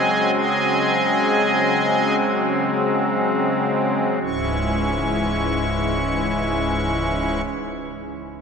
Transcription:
Already playing: C#3 F#3 G#3 C4 G#4 D#5 G#5
0.34 G#4 D#5 G#5
4.23 C#1 C#2 G#2 E3 G#3 C#4 E4 C#6

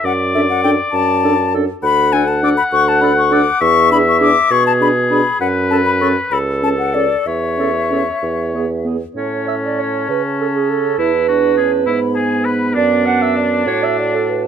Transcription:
0.04 F#2 D5 F#5
0.34 D4 A4 E5
0.49 F#5
0.64 D4 A4 G5
0.92 F#2 A5
1.24 D4 A4
1.54 D4 A4
1.83 D2 F#5 B5
2.13 D4 A4 G#5
2.28 A5
2.43 D4 A4 D6
2.57 B5
2.72 D2 C#6
2.88 A5
3.01 D4 A4 B5
3.18 C#6
3.30 D4 A4 D6
3.61 E2 E5 C#6
3.90 D4 G#4 B5
4.08 C#6
4.20 D4 G#4 D6
4.51 B2 G#4 C#6
4.67 A5
4.81 D4 G#4 B5
5.10 D4 G#4 B5
5.41 F#2 B4 F#5
5.70 C#4 A4 A5
5.85 B5
6.01 C#4 A4 C#6
6.31 C#2 A4 B5
6.62 C#4 A4 A5
6.78 F#5
6.94 C#4 A4 D5
7.26 E2 C#5 E5
7.58 C#4 A4
7.90 C#4 A4
8.23 E2
8.54 B3 G#4
8.85 B3 G#4
9.16 A2 C#4 C#5 A5
9.48 E5
9.64 D5
9.79 C#5
10.08 C#3 B4
10.40 A4
10.55 G#4
10.70 A4
10.98 E2 E4 B4
11.28 D4 F#4
11.57 C#4 G#4
11.86 G#2 B3 E4 B5
12.15 G#4 G#5
12.45 B4 B5
12.74 F#2 D4 D5 A5
13.06 F#5
13.22 E5
13.37 D5
13.66 A2 F#4 C#5
13.83 E5
13.98 D5
14.15 A4
14.29 B4

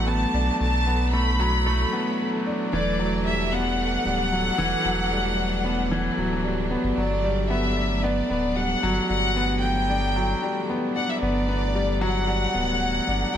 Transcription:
Already playing: A1 E3 F#3 A3 B3 D4
0.07 B3 A5
0.34 B1 D4
0.60 B1 A5
0.87 B3
1.13 A3 B5
1.40 F#3
1.66 A3
1.93 B3
2.46 D4
2.73 E1 E3 D5
2.99 F#3
3.26 G3 E5
3.52 B3 F#5
4.05 D1 G3
4.32 F#3
4.58 E1 E3
4.85 E1 F#3
5.11 G3
5.65 B3
5.91 E3
6.17 D1 F#3
6.44 G3
6.71 B3
6.84 G1
6.97 G1 E3 F#3 D5
7.24 G3
7.50 B3 E5
7.77 D4
8.04 B3 D5
8.30 D1 B3
8.57 G3 F#5
8.83 G1 F#3
9.09 G1 G3 F#5
9.36 B3
9.63 G5
9.89 D4
10.16 F#3
10.43 G3
10.70 B3
10.96 D4 F#5
11.09 E5
11.22 G1 B3 D5
11.49 B3
11.75 G3
12.01 F#3 F#5
12.28 G3
12.55 D1 B3
13.08 G1 D4
13.34 F#3

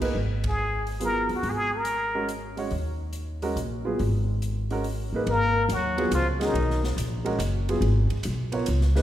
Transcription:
0.01 A#3 D#4 G#4 B4, muted upright bass stroke, kick, crash
0.15 G#1
0.44 kick, ride
0.48 G#4
0.87 open hi-hat
1.00 F#3 B3 F4 G#4, closed hi-hat
1.04 A#4
1.29 D#2, open hi-hat
1.35 F#4
1.43 G#1, open hi-hat
1.49 G#4
1.76 A#4
1.85 closed hi-hat
2.15 G#3 C#4 F#4 A#4
2.29 closed hi-hat
2.57 G#3 C#4 F#4 C#5, open hi-hat
2.71 D#2, open hi-hat
3.13 closed hi-hat
3.42 G#3 C#4 F#4 A#4, open hi-hat
3.56 A#1, closed hi-hat
3.85 F#3 B3 F4 G#4
3.99 G#1, open hi-hat
4.42 closed hi-hat
4.71 G#3 C#4 F#4 A#4, open hi-hat
4.84 open hi-hat
5.13 A1 A#3 D#4 G#4 B4
5.27 G#1 A#3 A#4, ride
5.69 D#2 F#3 F#4, hi-hat pedal, ride
5.97 F#3 B3 F4 G#4, ride
6.11 C#2 F4, hi-hat pedal, ride
6.16 F3
6.40 G#3 C#4 F#4 G#4, snare, ride
6.44 D#3 D#4
6.54 B1, ride
6.70 snare
6.84 snare
6.97 A#1, hi-hat pedal, ride
7.25 G#3 C#4 F#4 A#4, ride
7.39 F#1, hi-hat pedal, ride
7.69 F#3 B3 F4 G#4, ride
7.81 G#1, ride
8.10 muted upright bass stroke, ride
8.23 B1, hi-hat pedal, ride
8.52 B3 F4 A#4 C#5, ride
8.66 C#2, hi-hat pedal, ride
8.81 snare
8.95 A#3 D#4 G#4 B4, snare

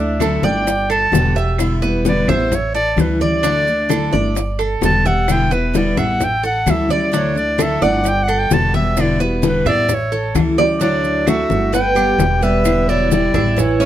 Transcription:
Already playing: D2 D4 E4 E5
0.00 A3
0.20 D3 F#3 A3 D4 E4 A4, high bongo, high conga, claves, maracas
0.43 G1 A3 D4 E4 D5 G5, high conga, maracas
0.67 muted steel-string acoustic guitar stroke, high bongo, high conga, maracas
0.90 A4 A5, high conga, claves, maracas
1.12 E1 D3 G3 B3 G4, high bongo, low bongo, high conga, maracas
1.35 G3 B3 G4 E5, maracas
1.58 B2 D3 G3 B3 E4, high bongo, high conga, claves, maracas
1.82 G3 B3 E4 B4, high bongo, high conga, maracas
2.05 B2 D3 G3 B3 E4, high bongo, high conga, maracas
2.09 D5
2.27 A1 G3 B3 E4 C5 E5, high conga, low conga, claves, maracas
2.52 C#5, muted steel-string acoustic guitar stroke, high bongo, high conga, low conga, maracas
2.75 A4 D5, high bongo, high conga, maracas
2.97 D2 E3 G3 C#4 E4, high bongo, low bongo, high conga, claves, maracas
3.01 B4
3.20 G3 C#4 E4 D5, high bongo, high conga, maracas
3.43 D3 F#3 A3 D4 E4, high bongo, high conga, maracas
3.67 A3 D4 E4, high conga, maracas
3.89 D3 F#3 A3 D4 E4 A4, high bongo, high conga, claves, maracas
4.11 G1 A3 D4 E4 D5, high conga, maracas
4.35 muted steel-string acoustic guitar stroke, high bongo, high conga, maracas
4.59 A4, high conga, claves, maracas
4.81 E1 D3 G3 B3 G4, high bongo, low bongo, high conga, maracas
4.85 A5
5.05 G3 B3 G4 E5 F#5, high conga, maracas
5.28 B2 D3 G3 B3 E4 G5, high bongo, claves, maracas
5.50 G3 B3 E4 B4, high bongo, high conga, maracas
5.74 B2 D3 G3 B3 E4 D5, high bongo, high conga, maracas
5.97 A1 G3 B3 E4 E5 F#5, high conga, low conga, claves, maracas
6.20 muted steel-string acoustic guitar stroke, high bongo, high conga, low conga, maracas
6.24 G5
6.43 A4 F#5, high bongo, high conga, maracas
6.66 D2 E3 G3 C#4 E4, high bongo, low bongo, high conga, claves, maracas
6.70 E5
6.89 G3 C#4 E4 D5, high bongo, high conga, maracas
7.12 D3 F#3 A3 D4 E4, high bongo, high conga, maracas
7.17 C#5
7.35 A3 D4 E4 D5, high conga, maracas
7.58 D3 F#3 A3 D4 E4 A4, high bongo, high conga, claves, maracas
7.62 E5
7.81 G1 A3 D4 E4 D5 F#5, high conga, maracas
8.04 muted steel-string acoustic guitar stroke, high bongo, high conga, maracas
8.08 G5
8.23 F#5
8.28 A4, high conga, claves, maracas
8.39 G5
8.50 E1 D3 G3 B3 G4 A5, high bongo, low bongo, high conga, maracas
8.74 G3 B3 G4 E5, high conga, maracas
8.97 B2 D3 G3 B3 E4 D5, high bongo, claves, maracas
9.19 G3 B3 E4 F#4 B4, high bongo, high conga, maracas
9.42 B2 D3 G3 B3 E4, high bongo, high conga, maracas
9.47 B4
9.65 A1 G3 B3 E4 D5 E5, high conga, low conga, claves, maracas
9.88 muted steel-string acoustic guitar stroke, high bongo, high conga, low conga, maracas
9.94 C#5
10.12 A4, high bongo, high conga, maracas
10.35 D2 E3 G3 C#4 E4, high bongo, high conga, claves, maracas
10.58 G3 C#4 E4 D5, low bongo, maracas
10.80 D3 F#3 A3 D4 E4 D5, high bongo, high conga, maracas
11.04 high conga, maracas
11.27 F#3 A3 D4 E4 F#4 E5, high bongo, high conga, claves, maracas
11.50 G1, high conga, maracas
11.72 B3 B4 G5, muted steel-string acoustic guitar stroke, high bongo, high conga, maracas
11.95 G3 B3 G4, high conga, claves, maracas
12.18 E1 D3 G3 B3 G4, high bongo, low bongo, high conga, maracas
12.41 G3 B3 G4 B4 E5, maracas
12.64 B2 D3 G3 B3 E4, high bongo, high conga, claves, maracas
12.89 F#3 E4 D5, high bongo, high conga, maracas
13.10 D3 G3 B3 E4 D5, high bongo, high conga, maracas
13.34 A1 E4, high conga, low conga, claves, maracas
13.56 E3 C#5, muted steel-string acoustic guitar stroke, high bongo, high conga, low conga, maracas
13.80 G3 C#4 E4, high bongo, high conga, maracas

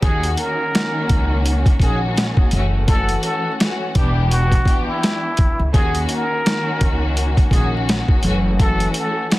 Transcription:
0.01 D#2 D#3 A#3 C#4 F#4 G#4, kick, closed hi-hat
0.23 closed hi-hat
0.37 A#4, closed hi-hat
0.74 D#3 A#3 C#4 F#4, snare, closed hi-hat
1.09 C#2, kick, closed hi-hat
1.46 closed hi-hat
1.66 kick, closed hi-hat
1.79 A#1 D#3 A#3 C#4 F#4 G#4, kick, closed hi-hat
2.17 snare, closed hi-hat
2.37 kick
2.51 F#1 E3 A3 C#4 F#4, closed hi-hat
2.88 E3 A3 C#4 F#4 A4, kick, closed hi-hat
3.09 closed hi-hat
3.23 A4, closed hi-hat
3.59 E3 A3 C#4 F#4, snare, closed hi-hat
3.95 E1 E3 B3 D4 G4, kick, closed hi-hat
4.29 F#4, closed hi-hat
4.52 kick, closed hi-hat
4.65 E3 B3 D4 G4, kick, closed hi-hat
4.87 E4
5.03 snare, closed hi-hat
5.37 kick, closed hi-hat
5.59 C#2
5.73 D#2 D#3 A#3 C#4 F#4 G#4, kick, closed hi-hat
5.95 closed hi-hat
6.09 A#4, closed hi-hat
6.45 D#3 A#3 C#4 F#4, snare, closed hi-hat
6.81 C#2, kick, closed hi-hat
7.17 closed hi-hat
7.37 kick, closed hi-hat
7.51 A#1 D#3 A#3 C#4 F#4 G#4, kick, closed hi-hat
7.89 snare, closed hi-hat
8.08 kick
8.23 F#1 E3 A3 C#4 F#4, closed hi-hat
8.59 E3 A3 C#4 F#4 A4, kick, closed hi-hat
8.80 closed hi-hat
8.94 A4, closed hi-hat
9.31 E3 A3 C#4 F#4, snare, closed hi-hat

